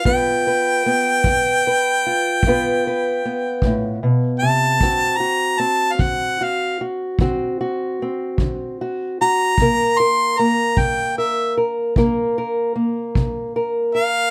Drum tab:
BD |o--o--o--o--|o--o--o--o--|o--o--o--o--|